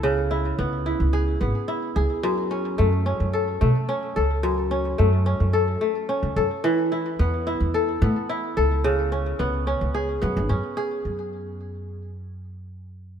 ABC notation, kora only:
X:1
M:4/4
L:1/8
Q:1/4=109
K:F#m
V:1 name="Kora"
C, E B, E G B, E G | F,, C A, C A A, C A | F,, C A, C A A, C A | E, E B, E A B, E A |
C, C B, C G B, C G | z8 |]